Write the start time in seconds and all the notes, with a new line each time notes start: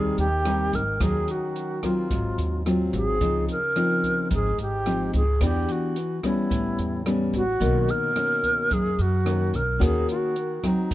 Already playing: D#2 D#3 G3 C4 D#4 G#4
0.18 D#2 G4, closed hi-hat
0.45 G3 C4 D#4, cross-stick, closed hi-hat
0.73 G#1 A#4, kick, closed hi-hat
1.00 D#2 D#3 F#3 C#4 G#4, kick, cross-stick, closed hi-hat
1.28 F#4, closed hi-hat
1.56 closed hi-hat
1.83 F#3 C4 F4, kick, cross-stick, closed hi-hat
2.11 G#1 G#2, kick, closed hi-hat
2.38 D#2, closed hi-hat
2.66 F#3 C4 F4, cross-stick, closed hi-hat
2.93 G#1 G#4, kick, closed hi-hat
3.21 C#2 C#3 F3 C4 D#4, kick, closed hi-hat
3.49 A#4, closed hi-hat
3.76 F3 C4 D#4, cross-stick, closed hi-hat
4.03 kick, closed hi-hat
4.30 G#1 G#2 G#4, kick, closed hi-hat
4.58 G#1 G4, closed hi-hat
4.86 F3 C4 D#4, cross-stick, closed hi-hat
5.13 C#2 G#4, kick, closed hi-hat
5.41 E2 E3 B3 D4 G4, kick, cross-stick, closed hi-hat
5.68 F#4, closed hi-hat
5.96 closed hi-hat
6.24 G3 B3 C#4 E4, kick, cross-stick, closed hi-hat
6.51 A1 A2, kick, closed hi-hat
6.78 E2, closed hi-hat
7.06 G3 B3 C#4, cross-stick, closed hi-hat
7.33 A1 F#4, kick, closed hi-hat
7.60 B1 B2 D#3 A#3 C#4, kick, closed hi-hat
7.88 A#4, closed hi-hat
8.15 D#3 A#3 C#4, cross-stick, closed hi-hat
8.43 kick, closed hi-hat
8.70 F#2 G#4, kick, closed hi-hat
8.99 F#2 F#4, closed hi-hat
9.25 D#3 A#3 C#4, cross-stick, closed hi-hat
9.54 B1 A#4, kick, closed hi-hat
9.79 D#2 D#3 A#3 C#4 F#4, kick, cross-stick, closed hi-hat
9.84 G#4
10.09 F#4, closed hi-hat
10.36 closed hi-hat
10.63 F#3 C4 D#4, kick, cross-stick, closed hi-hat
10.91 G#1 G#2, kick